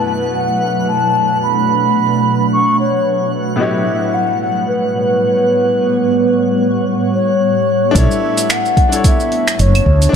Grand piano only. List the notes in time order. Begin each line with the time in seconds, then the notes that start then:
Already playing: B2 D4 E4 F#4 A4 C#5
3.56 A2 B3 E4 F#4
3.61 G4 C#5
7.91 D4 E4
7.96 A4 C#5
8.89 D4 E4
8.94 A4 C#5
10.09 D4 E4